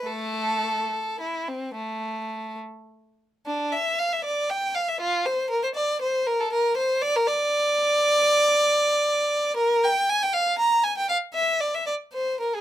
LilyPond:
\new Staff \with { instrumentName = "Violin" } { \time 12/8 \key a \minor \tempo 4. = 78 << { a'2 e'8 c'8 a4. r4. | \key d \minor d'8 e''8 f''16 e''16 d''8 g''8 f''16 e''16 f'8 c''8 bes'16 c''16 d''8 c''8 bes'16 a'16 | bes'8 c''8 d''16 bes'16 d''1~ d''8 | bes'8 g''8 gis''16 g''16 f''8 bes''8 gis''16 g''16 f''8 e''8 d''16 e''16 d''8 c''8 bes'16 gis'16 | } \\ { a4. r1 r8 | r1. | r1. | r1. | } >> }